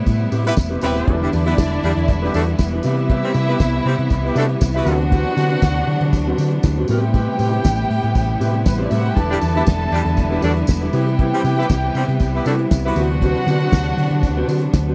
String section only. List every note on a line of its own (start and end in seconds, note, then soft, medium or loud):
0.00 1.04 C3 medium
0.00 1.06 G3 medium
0.00 1.06 A3 medium
0.00 1.06 B3 medium
0.00 1.06 E4 medium
1.08 2.83 D3 medium
1.08 6.85 E3 medium
1.08 4.83 G3 medium
1.08 6.85 B3 medium
1.08 2.83 E4 loud
2.85 9.13 C3 medium
2.85 4.85 E4 medium
4.87 6.87 F#3 medium
4.87 6.87 D4 medium
6.88 12.93 G3 medium
6.88 9.14 A3 medium
6.88 14.95 B3 medium
6.88 12.93 E4 medium
9.17 10.93 D3 medium
9.17 14.95 E3 medium
10.95 14.95 C3 medium
12.96 14.95 F#3 medium
12.96 14.95 D4 medium